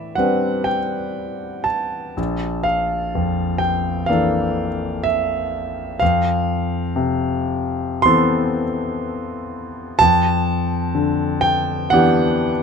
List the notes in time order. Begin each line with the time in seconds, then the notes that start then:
Already playing: A2 E3 D5 E5
0.15 G3 C4 D4 B4 F#5
0.64 G5
1.64 A5
2.17 A#1
2.63 F5
3.15 F2
3.58 G5
4.06 E3 A#3 D4 F5
4.11 A4
5.04 E5
6.00 F2 F5
6.96 C3
8.02 E3 B3 C4 A4 C6
9.99 F2 A5
10.95 D3
11.41 G5
11.90 E3 B3 D4 G4 F#5